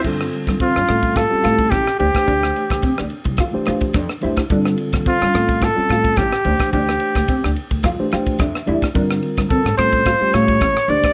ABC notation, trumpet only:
X:1
M:4/4
L:1/8
Q:"Swing 16ths" 1/4=108
K:Aphr
V:1 name="Trumpet"
z2 F2 A2 G G- | G3 z4 z | z2 F2 A2 G2 | G3 z4 z |
z2 A ^B2 ^c2 d |]